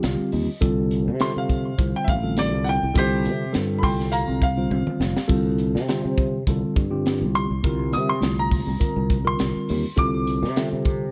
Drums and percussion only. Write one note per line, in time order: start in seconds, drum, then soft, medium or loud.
0.03 snare loud
0.03 closed hi-hat medium
0.32 open hi-hat medium
0.62 kick loud
0.62 closed hi-hat medium
0.91 closed hi-hat medium
1.20 snare loud
1.20 closed hi-hat medium
1.49 kick medium
1.49 closed hi-hat medium
1.78 kick medium
1.78 closed hi-hat medium
2.08 kick loud
2.08 closed hi-hat medium
2.37 snare loud
2.37 closed hi-hat medium
2.66 closed hi-hat medium
2.95 kick loud
2.95 closed hi-hat medium
3.25 closed hi-hat medium
3.54 snare loud
3.54 closed hi-hat medium
3.83 kick loud
3.83 open hi-hat medium
4.00 snare soft
4.12 closed hi-hat medium
4.42 kick medium
4.42 closed hi-hat medium
4.71 high tom medium
4.87 mid tom medium
5.01 snare medium
5.17 snare medium
5.29 kick loud
5.29 closed hi-hat medium
5.29 splash medium
5.58 closed hi-hat medium
5.76 snare soft
5.88 snare medium
5.88 closed hi-hat medium
6.18 kick medium
6.18 closed hi-hat medium
6.47 kick medium
6.47 closed hi-hat medium
6.76 kick medium
6.76 closed hi-hat medium
7.06 snare medium
7.06 closed hi-hat medium
7.35 closed hi-hat medium
7.64 kick loud
7.64 closed hi-hat medium
7.93 closed hi-hat medium
8.22 snare medium
8.22 closed hi-hat medium
8.52 kick medium
8.52 open hi-hat medium
8.81 kick medium
8.81 closed hi-hat medium
9.10 kick medium
9.10 closed hi-hat medium
9.39 snare loud
9.39 closed hi-hat medium
9.69 open hi-hat medium
9.97 kick loud
9.97 closed hi-hat medium
10.27 closed hi-hat medium
10.44 snare soft
10.56 snare loud
10.56 closed hi-hat medium
10.85 kick medium
10.85 closed hi-hat medium